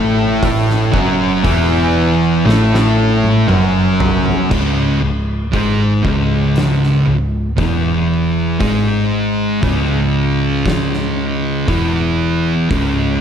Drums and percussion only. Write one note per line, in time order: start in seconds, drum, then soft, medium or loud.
0.43 kick loud
0.43 open hi-hat medium
0.70 snare soft
0.94 kick loud
1.44 kick loud
1.44 open hi-hat medium
2.49 snare medium
2.75 snare medium
3.24 high tom medium
3.49 mid tom medium
4.00 floor tom loud
4.26 floor tom medium
4.51 kick loud
4.51 crash loud
5.53 kick medium
5.53 open hi-hat soft
6.05 kick loud
6.56 snare loud
6.56 open hi-hat medium
6.83 snare soft
7.58 kick loud
7.58 open hi-hat medium
8.60 kick loud
8.60 open hi-hat medium
9.63 kick medium
9.63 open hi-hat medium
10.66 kick loud
10.66 snare loud
10.66 open hi-hat medium
10.94 snare soft
11.68 kick loud
11.68 open hi-hat medium
12.71 kick loud
12.71 open hi-hat medium